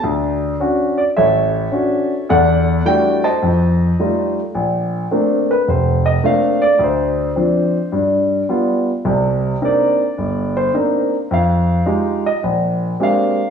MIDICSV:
0, 0, Header, 1, 2, 480
1, 0, Start_track
1, 0, Key_signature, 2, "major"
1, 0, Tempo, 563380
1, 28, Time_signature, 4, 2, 24, 8
1, 3868, Key_signature, -2, "major"
1, 11503, End_track
2, 0, Start_track
2, 0, Title_t, "Grand piano"
2, 0, Program_c, 0, 0
2, 30, Note_on_c, 0, 38, 70
2, 447, Note_off_c, 0, 38, 0
2, 512, Note_on_c, 0, 61, 52
2, 514, Note_on_c, 0, 62, 47
2, 520, Note_on_c, 0, 66, 57
2, 833, Note_on_c, 0, 74, 71
2, 850, Note_off_c, 0, 61, 0
2, 851, Note_off_c, 0, 62, 0
2, 853, Note_off_c, 0, 66, 0
2, 875, Note_off_c, 0, 74, 0
2, 993, Note_on_c, 0, 76, 79
2, 996, Note_on_c, 0, 69, 61
2, 999, Note_on_c, 0, 73, 62
2, 1001, Note_on_c, 0, 33, 66
2, 1413, Note_off_c, 0, 33, 0
2, 1463, Note_on_c, 0, 61, 47
2, 1470, Note_on_c, 0, 62, 47
2, 1473, Note_on_c, 0, 66, 55
2, 1805, Note_off_c, 0, 61, 0
2, 1809, Note_off_c, 0, 62, 0
2, 1810, Note_off_c, 0, 66, 0
2, 1917, Note_off_c, 0, 76, 0
2, 1918, Note_off_c, 0, 69, 0
2, 1920, Note_off_c, 0, 73, 0
2, 1954, Note_on_c, 0, 69, 65
2, 1956, Note_on_c, 0, 74, 62
2, 1961, Note_on_c, 0, 78, 90
2, 1962, Note_on_c, 0, 40, 67
2, 2373, Note_off_c, 0, 40, 0
2, 2402, Note_off_c, 0, 78, 0
2, 2434, Note_on_c, 0, 55, 51
2, 2434, Note_on_c, 0, 57, 47
2, 2434, Note_on_c, 0, 62, 44
2, 2437, Note_on_c, 0, 64, 48
2, 2438, Note_on_c, 0, 79, 90
2, 2443, Note_on_c, 0, 66, 56
2, 2760, Note_on_c, 0, 75, 63
2, 2762, Note_on_c, 0, 72, 61
2, 2762, Note_on_c, 0, 81, 83
2, 2767, Note_off_c, 0, 79, 0
2, 2770, Note_off_c, 0, 55, 0
2, 2771, Note_off_c, 0, 57, 0
2, 2771, Note_off_c, 0, 62, 0
2, 2772, Note_off_c, 0, 64, 0
2, 2775, Note_off_c, 0, 66, 0
2, 2877, Note_off_c, 0, 69, 0
2, 2878, Note_off_c, 0, 74, 0
2, 2917, Note_on_c, 0, 41, 62
2, 3330, Note_off_c, 0, 41, 0
2, 3359, Note_off_c, 0, 81, 0
2, 3402, Note_on_c, 0, 55, 46
2, 3406, Note_on_c, 0, 63, 45
2, 3407, Note_on_c, 0, 57, 46
2, 3410, Note_on_c, 0, 65, 54
2, 3682, Note_off_c, 0, 75, 0
2, 3683, Note_off_c, 0, 72, 0
2, 3735, Note_off_c, 0, 55, 0
2, 3736, Note_off_c, 0, 63, 0
2, 3737, Note_off_c, 0, 57, 0
2, 3739, Note_off_c, 0, 65, 0
2, 3873, Note_on_c, 0, 34, 62
2, 4288, Note_off_c, 0, 34, 0
2, 4355, Note_on_c, 0, 58, 44
2, 4357, Note_on_c, 0, 57, 50
2, 4358, Note_on_c, 0, 60, 46
2, 4360, Note_on_c, 0, 62, 55
2, 4691, Note_off_c, 0, 58, 0
2, 4692, Note_off_c, 0, 57, 0
2, 4693, Note_off_c, 0, 60, 0
2, 4693, Note_off_c, 0, 62, 0
2, 4693, Note_on_c, 0, 71, 70
2, 4834, Note_off_c, 0, 71, 0
2, 4836, Note_on_c, 0, 29, 62
2, 4853, Note_on_c, 0, 72, 60
2, 5155, Note_off_c, 0, 72, 0
2, 5160, Note_on_c, 0, 75, 80
2, 5250, Note_off_c, 0, 29, 0
2, 5308, Note_off_c, 0, 75, 0
2, 5313, Note_on_c, 0, 57, 52
2, 5318, Note_on_c, 0, 58, 46
2, 5318, Note_on_c, 0, 62, 53
2, 5319, Note_on_c, 0, 60, 42
2, 5330, Note_on_c, 0, 77, 79
2, 5633, Note_off_c, 0, 77, 0
2, 5638, Note_on_c, 0, 74, 86
2, 5650, Note_off_c, 0, 57, 0
2, 5652, Note_off_c, 0, 58, 0
2, 5652, Note_off_c, 0, 62, 0
2, 5653, Note_off_c, 0, 60, 0
2, 5785, Note_on_c, 0, 38, 65
2, 5786, Note_off_c, 0, 74, 0
2, 5825, Note_on_c, 0, 72, 65
2, 6204, Note_off_c, 0, 38, 0
2, 6270, Note_on_c, 0, 60, 49
2, 6271, Note_on_c, 0, 53, 50
2, 6279, Note_on_c, 0, 62, 54
2, 6608, Note_off_c, 0, 60, 0
2, 6609, Note_off_c, 0, 53, 0
2, 6613, Note_off_c, 0, 62, 0
2, 6732, Note_off_c, 0, 72, 0
2, 6749, Note_on_c, 0, 43, 63
2, 7166, Note_off_c, 0, 43, 0
2, 7233, Note_on_c, 0, 55, 49
2, 7238, Note_on_c, 0, 59, 43
2, 7239, Note_on_c, 0, 65, 57
2, 7570, Note_off_c, 0, 55, 0
2, 7572, Note_off_c, 0, 59, 0
2, 7573, Note_off_c, 0, 65, 0
2, 7710, Note_on_c, 0, 48, 68
2, 7711, Note_on_c, 0, 36, 67
2, 8126, Note_off_c, 0, 48, 0
2, 8127, Note_off_c, 0, 36, 0
2, 8194, Note_on_c, 0, 58, 51
2, 8197, Note_on_c, 0, 60, 48
2, 8197, Note_on_c, 0, 62, 46
2, 8198, Note_on_c, 0, 63, 61
2, 8221, Note_on_c, 0, 74, 69
2, 8530, Note_off_c, 0, 58, 0
2, 8531, Note_off_c, 0, 60, 0
2, 8532, Note_off_c, 0, 62, 0
2, 8532, Note_off_c, 0, 63, 0
2, 8672, Note_on_c, 0, 31, 61
2, 8974, Note_off_c, 0, 74, 0
2, 9004, Note_on_c, 0, 72, 78
2, 9087, Note_off_c, 0, 31, 0
2, 9149, Note_off_c, 0, 72, 0
2, 9149, Note_on_c, 0, 58, 49
2, 9153, Note_on_c, 0, 60, 45
2, 9155, Note_on_c, 0, 63, 56
2, 9158, Note_on_c, 0, 62, 47
2, 9487, Note_off_c, 0, 58, 0
2, 9489, Note_off_c, 0, 60, 0
2, 9491, Note_off_c, 0, 63, 0
2, 9492, Note_off_c, 0, 62, 0
2, 9635, Note_on_c, 0, 41, 65
2, 9657, Note_on_c, 0, 77, 83
2, 10048, Note_off_c, 0, 41, 0
2, 10104, Note_on_c, 0, 56, 53
2, 10106, Note_on_c, 0, 63, 46
2, 10112, Note_on_c, 0, 65, 47
2, 10115, Note_on_c, 0, 67, 55
2, 10411, Note_off_c, 0, 77, 0
2, 10445, Note_off_c, 0, 56, 0
2, 10446, Note_off_c, 0, 63, 0
2, 10449, Note_off_c, 0, 65, 0
2, 10449, Note_on_c, 0, 75, 74
2, 10450, Note_off_c, 0, 67, 0
2, 10591, Note_off_c, 0, 75, 0
2, 10594, Note_on_c, 0, 34, 62
2, 11008, Note_off_c, 0, 34, 0
2, 11075, Note_on_c, 0, 56, 50
2, 11077, Note_on_c, 0, 58, 48
2, 11080, Note_on_c, 0, 60, 44
2, 11082, Note_on_c, 0, 62, 47
2, 11086, Note_on_c, 0, 67, 54
2, 11103, Note_on_c, 0, 77, 81
2, 11410, Note_off_c, 0, 56, 0
2, 11411, Note_off_c, 0, 58, 0
2, 11413, Note_off_c, 0, 60, 0
2, 11413, Note_off_c, 0, 62, 0
2, 11416, Note_off_c, 0, 67, 0
2, 11503, Note_off_c, 0, 77, 0
2, 11503, End_track
0, 0, End_of_file